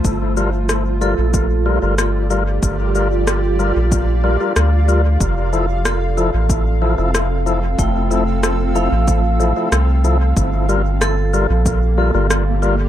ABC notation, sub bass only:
X:1
M:4/4
L:1/16
Q:1/4=93
K:Gdor
V:1 name="Sub bass" clef=bass
G,,,6- G,,, B,,,4 G,,,4- G,,, | G,,,6- G,,, B,,,4 z D,,4 | F,,,6- F,,, A,,,4 F,,,4- F,,, | F,,,6- F,,, A,,,4 z C,,4 |
G,,,6- G,,, B,,,4 G,,,4- G,,, |]